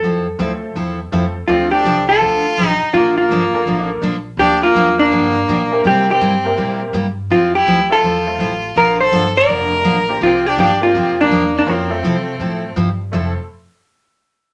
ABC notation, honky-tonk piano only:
X:1
M:4/4
L:1/8
Q:"Swing" 1/4=165
K:F
V:1 name="Honky-tonk piano"
z2 [A,CEFA]3 z [A,CEFA] z | [A,CDFA]3 z4 z | z3 [B,DFAB]3 z2 | z6 z [B,CEGB]- |
[B,CEGB]2 z [B,CEGB]3 z2 | z3 [A,CEFA] z [A,CEFA] z2 | z6 z [B,CDFG]- | [B,CDFG]2 z [B,CDFG]3 z2 |
[B,_DF_GB] [A,CFAe]4 z3 | [A,CEFA] z6 z |]